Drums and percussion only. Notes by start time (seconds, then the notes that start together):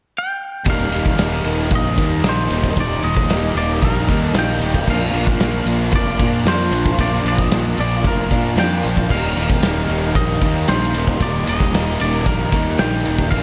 0.66 kick, ride
0.92 ride
1.06 kick
1.19 snare, ride
1.44 ride
1.71 kick, ride
1.98 kick, ride
2.24 snare, ride
2.50 ride
2.64 kick
2.77 kick, ride
3.03 ride
3.17 kick
3.30 snare, ride
3.57 ride
3.82 kick, ride
4.09 kick, ride
4.34 snare, ride
4.61 ride
4.74 kick
4.88 kick, crash
5.14 ride
5.27 kick
5.40 snare, ride
5.67 ride
5.92 kick, ride
6.20 kick, ride
6.46 snare, ride
6.72 ride
6.86 kick
6.99 kick, ride
7.26 ride
7.38 kick
7.51 snare, ride
7.78 ride
8.04 kick, ride
8.31 kick, ride
8.57 snare, ride
8.83 ride
8.97 kick
9.10 kick, crash
9.37 ride
9.50 kick
9.63 snare, ride
9.89 ride
10.15 kick, ride
10.42 kick, ride
10.68 snare, ride
10.95 ride
11.08 kick
11.20 kick, ride
11.47 ride
11.60 kick
11.74 snare, ride
12.00 ride
12.26 kick, ride
12.52 kick, ride
12.78 snare, ride
13.05 ride
13.19 kick
13.32 kick, crash